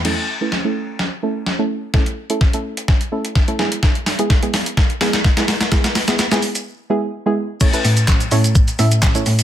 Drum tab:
CC |x---------------|----------------|----------------|----------------|
HH |----------------|-x-x-x-x-x-x-x-x|-xox-xox-xox-xox|-xox-xox--------|
SH |----------------|----------------|----------------|xxxxxxxx--------|
CP |----------------|----------------|----------------|----------------|
SD |o---o---o---o---|o---o---o---o-o-|o-o-o-o-o-oooooo|oooooo----------|
BD |----------------|o---o---o---o---|o---o---o---o---|o---------------|

CC |x---------------|
HH |-xox-xox-xox-xox|
SH |xxxxxxxxxxxxxxxx|
CP |----x-------x---|
SD |----o-------o---|
BD |o---o---o---o---|